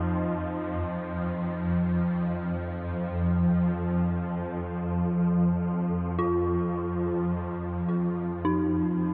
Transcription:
0.00 7.57 F2 medium
0.00 7.57 F3 medium
0.00 4.68 D#4 medium
0.00 7.60 F4 medium
0.00 7.58 C5 medium
0.00 7.60 C5 medium
0.00 7.61 D#5 medium
6.19 8.68 F4 medium
7.58 9.14 F2 medium
7.58 9.14 F3 medium
7.58 9.14 C5 medium
8.45 9.14 D#4 medium

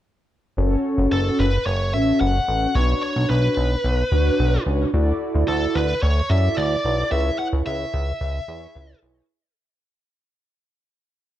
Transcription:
0.57 0.76 F#1 loud
0.57 1.46 C#4 medium
0.57 1.46 F#4 medium
0.57 1.46 A4 medium
0.57 1.46 C#5 loud
0.98 1.08 F#1 loud
1.12 1.31 F#1 loud
1.12 1.40 A4 medium
1.39 1.58 F#1 loud
1.39 1.66 B4 medium
1.66 1.95 F#1 loud
1.66 1.92 C#5 medium
1.93 2.13 A1 medium
1.93 2.38 C#4 medium
1.93 2.38 F#4 medium
1.93 2.38 A4 medium
1.93 2.38 C#5 medium
1.93 2.20 E5 loud
2.20 2.40 F#1 loud
2.20 2.77 F#5 loud
2.48 2.67 A1 medium
2.48 2.70 C#4 medium
2.48 2.70 F#4 medium
2.48 2.70 A4 medium
2.48 2.70 C#5 medium
2.75 2.94 B1 loud
2.75 3.64 D4 medium
2.75 3.64 F#4 medium
2.75 3.64 B4 medium
2.75 3.01 C#5 medium
2.75 3.64 C#5 medium
3.03 3.29 C#5 medium
3.16 3.26 B1 medium
3.30 3.49 B1 medium
3.30 4.62 B4 medium
3.57 3.76 B1 loud
3.84 4.04 B1 loud
4.12 4.31 D2 medium
4.12 4.56 D4 medium
4.12 4.56 F#4 medium
4.12 4.56 B4 medium
4.12 4.56 C#5 loud
4.39 4.58 B1 loud
4.66 4.85 C#2 medium
4.66 4.88 D4 medium
4.66 4.88 F#4 medium
4.66 4.88 B4 medium
4.66 4.88 C#5 medium
4.94 5.13 D2 loud
4.94 5.82 E4 medium
4.94 5.82 F#4 medium
4.94 5.82 A4 medium
4.94 5.82 D5 loud
5.35 5.44 D2 medium
5.48 5.67 D2 loud
5.48 5.76 A4 medium
5.75 5.95 D2 loud
5.75 6.01 B4 medium
6.02 6.22 D2 loud
6.02 6.31 C#5 medium
6.30 6.49 F#2 medium
6.30 6.74 E4 medium
6.30 6.74 F#4 medium
6.30 6.74 A4 medium
6.30 6.74 D5 medium
6.30 6.58 E5 medium
6.57 6.76 D2 loud
6.57 7.08 D5 medium
6.84 7.04 B1 medium
6.84 7.07 E4 medium
6.84 7.07 F#4 medium
6.84 7.07 A4 medium
6.84 7.07 D5 medium
7.11 7.31 C#2 loud
7.11 8.00 E4 medium
7.11 8.00 G#4 medium
7.11 8.00 B4 medium
7.11 8.00 C#5 medium
7.11 7.39 E5 loud
7.39 7.46 F#5 loud
7.53 7.62 C#2 loud
7.66 7.85 C#2 medium
7.66 8.99 E5 medium
7.94 8.13 C#2 loud
8.21 8.40 C#2 loud
8.48 8.67 E2 medium
8.48 8.92 E4 medium
8.48 8.92 G#4 medium
8.48 8.92 B4 medium
8.48 8.92 C#5 loud
8.75 8.94 C#2 loud
9.02 9.22 B1 medium
9.02 9.25 E4 medium
9.02 9.25 G#4 medium
9.02 9.25 B4 medium
9.02 9.25 C#5 medium

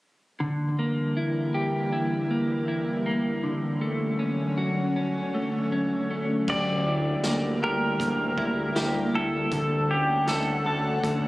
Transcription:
0.40 3.42 D2 medium
0.40 3.43 D3 medium
0.40 3.41 E3 medium
0.40 3.41 G3 medium
0.40 3.42 A#3 medium
0.79 2.29 A#3 soft
1.17 1.91 E4 soft
1.54 3.52 G4 medium
1.93 2.67 E4 medium
2.31 3.05 A#3 soft
2.68 3.52 E4 soft
3.06 3.52 A#3 soft
3.43 6.45 D2 medium
3.43 6.49 D3 medium
3.43 6.45 D3 medium
3.43 6.45 F#3 medium
3.43 6.45 C#4 medium
3.81 5.33 A3 soft
4.19 4.95 C#4 soft
4.58 6.49 F#4 soft
4.96 5.71 C#4 medium
5.34 6.09 A3 medium
5.72 6.56 C#4 soft
6.10 6.56 A3 medium
6.48 7.15 D2 loud
6.48 9.52 D3 medium
6.48 9.49 G3 medium
6.48 9.49 A#3 medium
6.48 9.49 E4 medium
6.48 7.62 G4 medium
6.48 7.59 D5 loud
6.48 kick loud
6.48 crash medium
6.87 8.37 E4 medium
7.24 7.58 D2 medium
7.24 7.99 A#3 soft
7.24 snare medium
7.24 closed hi-hat medium
7.62 7.95 D2 loud
7.62 8.75 G4 medium
7.62 9.15 A#4 medium
8.00 8.33 D2 loud
8.00 9.60 A#3 medium
8.00 kick medium
8.00 closed hi-hat medium
8.38 8.71 D2 medium
8.38 9.13 E4 medium
8.38 kick medium
8.75 9.09 D2 loud
8.75 9.52 G4 medium
8.75 snare loud
8.75 closed hi-hat medium
9.14 9.47 D2 medium
9.14 9.60 E4 medium
9.14 9.93 A4 medium
9.51 10.19 D2 loud
9.51 11.28 D3 medium
9.51 11.28 A3 medium
9.51 11.28 C#4 medium
9.51 10.65 A4 medium
9.51 11.28 F#5 medium
9.51 kick medium
9.51 closed hi-hat medium
9.90 11.28 C#4 medium
9.90 10.28 G4 medium
10.27 10.61 D2 medium
10.27 11.03 A3 medium
10.27 11.28 A4 medium
10.27 snare medium
10.27 closed hi-hat medium
10.66 10.99 D2 loud
10.66 11.28 A4 medium
11.03 11.28 D2 loud
11.03 11.28 A3 medium
11.03 kick medium
11.03 closed hi-hat medium

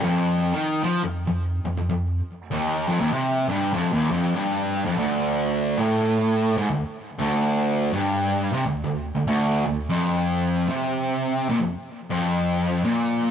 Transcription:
0.03 0.53 F2 loud
0.53 0.83 D#3 loud
0.84 1.02 F3 loud
1.03 1.23 F2 medium
1.27 1.58 F2 medium
1.65 1.76 F2 medium
1.77 1.88 F2 medium
1.90 2.19 F2 medium
2.51 2.87 D#2 loud
2.88 3.00 F2 loud
3.00 3.12 D#2 loud
3.12 3.49 C3 medium
3.49 3.73 G2 loud
3.74 3.92 F2 loud
3.92 4.10 D#2 medium
4.11 4.35 F2 loud
4.35 4.84 G2 loud
4.85 4.96 F2 loud
4.97 5.78 D2 loud
5.78 6.57 A2 medium
6.57 6.69 G#2 loud
6.70 6.82 D2 medium
7.19 7.91 D2 loud
7.93 8.52 G2 loud
8.53 8.65 C3 loud
8.66 8.83 D2 medium
8.84 9.10 D2 medium
9.15 9.26 D2 medium
9.27 9.63 D2 loud
9.65 9.84 D2 medium
9.89 10.68 F2 loud
10.69 11.48 C3 loud
11.50 11.60 A#2 loud
11.61 11.73 F2 medium
12.10 12.83 F2 loud
12.84 13.31 A#2 loud

